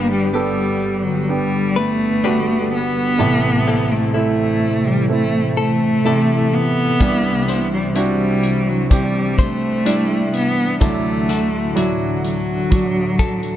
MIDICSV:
0, 0, Header, 1, 6, 480
1, 0, Start_track
1, 0, Key_signature, 1, "major"
1, 0, Tempo, 952381
1, 1611, Time_signature, 4, 2, 24, 8
1, 6837, End_track
2, 0, Start_track
2, 0, Title_t, "Clean electric guitar"
2, 0, Program_c, 0, 27
2, 0, Note_on_c, 0, 55, 58
2, 0, Note_on_c, 0, 62, 49
2, 0, Note_on_c, 0, 67, 49
2, 0, Note_on_c, 0, 71, 53
2, 164, Note_off_c, 0, 67, 0
2, 171, Note_on_c, 0, 67, 50
2, 882, Note_off_c, 0, 71, 0
2, 888, Note_on_c, 0, 71, 54
2, 1123, Note_off_c, 0, 62, 0
2, 1125, Note_off_c, 0, 67, 0
2, 1129, Note_on_c, 0, 62, 49
2, 1130, Note_off_c, 0, 71, 0
2, 1131, Note_on_c, 0, 67, 53
2, 1135, Note_on_c, 0, 71, 53
2, 1609, Note_on_c, 0, 45, 60
2, 1610, Note_off_c, 0, 55, 0
2, 1610, Note_off_c, 0, 71, 0
2, 1612, Note_on_c, 0, 69, 50
2, 1658, Note_off_c, 0, 62, 0
2, 1659, Note_off_c, 0, 67, 0
2, 1850, Note_off_c, 0, 69, 0
2, 1850, Note_on_c, 0, 60, 51
2, 1853, Note_on_c, 0, 64, 52
2, 1856, Note_on_c, 0, 69, 54
2, 2086, Note_off_c, 0, 64, 0
2, 2088, Note_on_c, 0, 64, 49
2, 2803, Note_off_c, 0, 69, 0
2, 2809, Note_on_c, 0, 69, 55
2, 3050, Note_off_c, 0, 64, 0
2, 3050, Note_off_c, 0, 69, 0
2, 3052, Note_on_c, 0, 64, 53
2, 3056, Note_on_c, 0, 69, 58
2, 3528, Note_off_c, 0, 45, 0
2, 3530, Note_on_c, 0, 48, 66
2, 3533, Note_off_c, 0, 69, 0
2, 3614, Note_off_c, 0, 60, 0
2, 3771, Note_on_c, 0, 62, 51
2, 3772, Note_off_c, 0, 64, 0
2, 3774, Note_on_c, 0, 64, 49
2, 3776, Note_on_c, 0, 72, 54
2, 4008, Note_off_c, 0, 64, 0
2, 4010, Note_on_c, 0, 64, 52
2, 4725, Note_off_c, 0, 72, 0
2, 4731, Note_on_c, 0, 72, 56
2, 4969, Note_off_c, 0, 62, 0
2, 4971, Note_off_c, 0, 72, 0
2, 4971, Note_on_c, 0, 62, 52
2, 4972, Note_off_c, 0, 64, 0
2, 4974, Note_on_c, 0, 64, 51
2, 5449, Note_on_c, 0, 50, 67
2, 5450, Note_off_c, 0, 48, 0
2, 5452, Note_on_c, 0, 69, 55
2, 5688, Note_off_c, 0, 62, 0
2, 5690, Note_off_c, 0, 69, 0
2, 5691, Note_off_c, 0, 64, 0
2, 5691, Note_on_c, 0, 64, 52
2, 5693, Note_on_c, 0, 66, 50
2, 5696, Note_on_c, 0, 69, 55
2, 5928, Note_off_c, 0, 66, 0
2, 5930, Note_on_c, 0, 66, 51
2, 6643, Note_off_c, 0, 69, 0
2, 6649, Note_on_c, 0, 69, 54
2, 6837, Note_off_c, 0, 50, 0
2, 6837, Note_off_c, 0, 64, 0
2, 6837, Note_off_c, 0, 66, 0
2, 6837, Note_off_c, 0, 69, 0
2, 6837, End_track
3, 0, Start_track
3, 0, Title_t, "Grand piano"
3, 0, Program_c, 1, 0
3, 0, Control_c, 1, 64, 127
3, 0, Note_on_c, 1, 31, 47
3, 0, Note_on_c, 1, 43, 48
3, 0, Note_on_c, 1, 59, 69
3, 0, Note_on_c, 1, 62, 61
3, 0, Note_on_c, 1, 67, 81
3, 145, Note_off_c, 1, 59, 0
3, 147, Note_off_c, 1, 62, 0
3, 149, Note_off_c, 1, 67, 0
3, 167, Note_on_c, 1, 59, 59
3, 171, Note_on_c, 1, 62, 52
3, 176, Note_on_c, 1, 69, 65
3, 625, Note_off_c, 1, 59, 0
3, 627, Note_off_c, 1, 62, 0
3, 630, Note_off_c, 1, 69, 0
3, 649, Note_on_c, 1, 59, 52
3, 652, Note_on_c, 1, 62, 43
3, 657, Note_on_c, 1, 67, 52
3, 1106, Note_off_c, 1, 59, 0
3, 1107, Note_off_c, 1, 62, 0
3, 1110, Note_off_c, 1, 67, 0
3, 1128, Note_on_c, 1, 59, 60
3, 1131, Note_on_c, 1, 62, 50
3, 1135, Note_on_c, 1, 66, 62
3, 1585, Note_off_c, 1, 59, 0
3, 1587, Note_off_c, 1, 62, 0
3, 1589, Note_off_c, 1, 66, 0
3, 1590, Note_off_c, 1, 43, 0
3, 1591, Note_off_c, 1, 31, 0
3, 1605, Note_on_c, 1, 57, 67
3, 1609, Note_on_c, 1, 33, 47
3, 1610, Note_on_c, 1, 48, 72
3, 1611, Note_on_c, 1, 45, 53
3, 1615, Note_on_c, 1, 64, 77
3, 1618, Control_c, 1, 64, 0
3, 1695, Control_c, 1, 64, 127
3, 2064, Note_off_c, 1, 57, 0
3, 2066, Note_off_c, 1, 48, 0
3, 2069, Note_off_c, 1, 64, 0
3, 2086, Note_on_c, 1, 57, 64
3, 2090, Note_on_c, 1, 60, 58
3, 2095, Note_on_c, 1, 64, 64
3, 2544, Note_off_c, 1, 57, 0
3, 2546, Note_off_c, 1, 60, 0
3, 2549, Note_off_c, 1, 64, 0
3, 2568, Note_on_c, 1, 57, 52
3, 2572, Note_on_c, 1, 60, 50
3, 2576, Note_on_c, 1, 64, 56
3, 3025, Note_off_c, 1, 57, 0
3, 3027, Note_off_c, 1, 60, 0
3, 3030, Note_off_c, 1, 64, 0
3, 3048, Note_on_c, 1, 57, 57
3, 3052, Note_on_c, 1, 48, 57
3, 3057, Note_on_c, 1, 64, 65
3, 3505, Note_off_c, 1, 57, 0
3, 3508, Note_off_c, 1, 48, 0
3, 3510, Note_off_c, 1, 33, 0
3, 3510, Note_off_c, 1, 45, 0
3, 3510, Note_off_c, 1, 64, 0
3, 3525, Note_on_c, 1, 55, 75
3, 3530, Note_on_c, 1, 36, 55
3, 3530, Note_on_c, 1, 48, 48
3, 3531, Note_on_c, 1, 62, 68
3, 3534, Note_on_c, 1, 64, 80
3, 3537, Control_c, 1, 64, 0
3, 3618, Control_c, 1, 64, 127
3, 3984, Note_off_c, 1, 55, 0
3, 3987, Note_off_c, 1, 62, 0
3, 3988, Note_off_c, 1, 64, 0
3, 4006, Note_on_c, 1, 60, 63
3, 4011, Note_on_c, 1, 62, 59
3, 4014, Note_on_c, 1, 66, 71
3, 4465, Note_off_c, 1, 60, 0
3, 4467, Note_off_c, 1, 62, 0
3, 4468, Note_off_c, 1, 66, 0
3, 4486, Note_on_c, 1, 60, 56
3, 4490, Note_on_c, 1, 62, 51
3, 4494, Note_on_c, 1, 67, 61
3, 4944, Note_off_c, 1, 60, 0
3, 4946, Note_off_c, 1, 62, 0
3, 4948, Note_off_c, 1, 67, 0
3, 4967, Note_on_c, 1, 55, 65
3, 4971, Note_on_c, 1, 62, 55
3, 4975, Note_on_c, 1, 64, 71
3, 5425, Note_off_c, 1, 55, 0
3, 5427, Note_off_c, 1, 62, 0
3, 5429, Note_off_c, 1, 64, 0
3, 5430, Note_off_c, 1, 36, 0
3, 5430, Note_off_c, 1, 48, 0
3, 5446, Note_on_c, 1, 54, 73
3, 5451, Note_on_c, 1, 38, 49
3, 5451, Note_on_c, 1, 50, 53
3, 5451, Note_on_c, 1, 62, 66
3, 5455, Note_on_c, 1, 64, 83
3, 5456, Control_c, 1, 64, 0
3, 5558, Control_c, 1, 64, 127
3, 5905, Note_off_c, 1, 54, 0
3, 5907, Note_off_c, 1, 62, 0
3, 5909, Note_off_c, 1, 64, 0
3, 5925, Note_on_c, 1, 54, 65
3, 5929, Note_on_c, 1, 62, 58
3, 5933, Note_on_c, 1, 64, 70
3, 6384, Note_off_c, 1, 54, 0
3, 6386, Note_off_c, 1, 62, 0
3, 6388, Note_off_c, 1, 64, 0
3, 6405, Note_on_c, 1, 54, 55
3, 6408, Note_on_c, 1, 62, 47
3, 6413, Note_on_c, 1, 66, 56
3, 6837, Note_off_c, 1, 38, 0
3, 6837, Note_off_c, 1, 50, 0
3, 6837, Note_off_c, 1, 54, 0
3, 6837, Note_off_c, 1, 62, 0
3, 6837, Note_off_c, 1, 66, 0
3, 6837, End_track
4, 0, Start_track
4, 0, Title_t, "Ambient pad"
4, 0, Program_c, 2, 92
4, 0, Note_on_c, 2, 50, 68
4, 0, Note_on_c, 2, 55, 62
4, 0, Note_on_c, 2, 59, 64
4, 0, Note_on_c, 2, 67, 79
4, 640, Note_off_c, 2, 67, 0
4, 648, Note_on_c, 2, 69, 77
4, 1589, Note_off_c, 2, 50, 0
4, 1589, Note_off_c, 2, 55, 0
4, 1590, Note_off_c, 2, 59, 0
4, 1600, Note_off_c, 2, 69, 0
4, 1609, Note_on_c, 2, 52, 65
4, 1610, Note_on_c, 2, 48, 72
4, 1610, Note_on_c, 2, 57, 65
4, 1610, Note_on_c, 2, 64, 75
4, 3511, Note_off_c, 2, 57, 0
4, 3511, Note_off_c, 2, 64, 0
4, 3528, Note_on_c, 2, 55, 67
4, 3529, Note_on_c, 2, 62, 77
4, 4480, Note_off_c, 2, 55, 0
4, 4488, Note_on_c, 2, 57, 61
4, 5430, Note_off_c, 2, 48, 0
4, 5440, Note_off_c, 2, 57, 0
4, 5445, Note_on_c, 2, 45, 73
4, 5445, Note_on_c, 2, 54, 67
4, 6837, Note_off_c, 2, 45, 0
4, 6837, Note_off_c, 2, 52, 0
4, 6837, Note_off_c, 2, 54, 0
4, 6837, Note_off_c, 2, 62, 0
4, 6837, End_track
5, 0, Start_track
5, 0, Title_t, "Cello"
5, 0, Program_c, 3, 42
5, 0, Note_on_c, 3, 59, 94
5, 53, Note_off_c, 3, 59, 0
5, 57, Note_on_c, 3, 55, 71
5, 165, Note_off_c, 3, 55, 0
5, 174, Note_on_c, 3, 55, 79
5, 529, Note_on_c, 3, 54, 68
5, 537, Note_off_c, 3, 55, 0
5, 654, Note_on_c, 3, 55, 79
5, 661, Note_off_c, 3, 54, 0
5, 892, Note_on_c, 3, 57, 84
5, 899, Note_off_c, 3, 55, 0
5, 1369, Note_off_c, 3, 57, 0
5, 1372, Note_on_c, 3, 59, 92
5, 1974, Note_on_c, 3, 57, 73
5, 1981, Note_off_c, 3, 59, 0
5, 2092, Note_off_c, 3, 57, 0
5, 2095, Note_on_c, 3, 57, 76
5, 2457, Note_on_c, 3, 55, 73
5, 2464, Note_off_c, 3, 57, 0
5, 2571, Note_off_c, 3, 55, 0
5, 2574, Note_on_c, 3, 57, 79
5, 2796, Note_off_c, 3, 57, 0
5, 2816, Note_on_c, 3, 57, 85
5, 3298, Note_on_c, 3, 59, 99
5, 3305, Note_off_c, 3, 57, 0
5, 3893, Note_off_c, 3, 59, 0
5, 3896, Note_on_c, 3, 55, 65
5, 4005, Note_off_c, 3, 55, 0
5, 4015, Note_on_c, 3, 55, 81
5, 4376, Note_on_c, 3, 54, 69
5, 4384, Note_off_c, 3, 55, 0
5, 4492, Note_off_c, 3, 54, 0
5, 4495, Note_on_c, 3, 55, 73
5, 4734, Note_on_c, 3, 57, 86
5, 4741, Note_off_c, 3, 55, 0
5, 5212, Note_off_c, 3, 57, 0
5, 5215, Note_on_c, 3, 59, 86
5, 5436, Note_off_c, 3, 59, 0
5, 5456, Note_on_c, 3, 57, 80
5, 5938, Note_on_c, 3, 54, 67
5, 5946, Note_off_c, 3, 57, 0
5, 6173, Note_off_c, 3, 54, 0
5, 6176, Note_on_c, 3, 54, 76
5, 6837, Note_off_c, 3, 54, 0
5, 6837, End_track
6, 0, Start_track
6, 0, Title_t, "Drums"
6, 3530, Note_on_c, 9, 42, 72
6, 3531, Note_on_c, 9, 36, 85
6, 3581, Note_off_c, 9, 36, 0
6, 3581, Note_off_c, 9, 42, 0
6, 3772, Note_on_c, 9, 42, 71
6, 3822, Note_off_c, 9, 42, 0
6, 4009, Note_on_c, 9, 42, 74
6, 4060, Note_off_c, 9, 42, 0
6, 4250, Note_on_c, 9, 42, 50
6, 4301, Note_off_c, 9, 42, 0
6, 4490, Note_on_c, 9, 36, 75
6, 4490, Note_on_c, 9, 42, 64
6, 4541, Note_off_c, 9, 36, 0
6, 4541, Note_off_c, 9, 42, 0
6, 4729, Note_on_c, 9, 42, 53
6, 4730, Note_on_c, 9, 36, 73
6, 4779, Note_off_c, 9, 42, 0
6, 4780, Note_off_c, 9, 36, 0
6, 4971, Note_on_c, 9, 42, 74
6, 5022, Note_off_c, 9, 42, 0
6, 5210, Note_on_c, 9, 42, 57
6, 5260, Note_off_c, 9, 42, 0
6, 5449, Note_on_c, 9, 42, 71
6, 5450, Note_on_c, 9, 36, 88
6, 5500, Note_off_c, 9, 42, 0
6, 5501, Note_off_c, 9, 36, 0
6, 5691, Note_on_c, 9, 42, 72
6, 5741, Note_off_c, 9, 42, 0
6, 5930, Note_on_c, 9, 42, 69
6, 5981, Note_off_c, 9, 42, 0
6, 6171, Note_on_c, 9, 42, 53
6, 6222, Note_off_c, 9, 42, 0
6, 6409, Note_on_c, 9, 42, 63
6, 6410, Note_on_c, 9, 36, 74
6, 6460, Note_off_c, 9, 36, 0
6, 6460, Note_off_c, 9, 42, 0
6, 6649, Note_on_c, 9, 36, 75
6, 6650, Note_on_c, 9, 42, 56
6, 6700, Note_off_c, 9, 36, 0
6, 6700, Note_off_c, 9, 42, 0
6, 6769, Note_on_c, 9, 42, 37
6, 6819, Note_off_c, 9, 42, 0
6, 6837, End_track
0, 0, End_of_file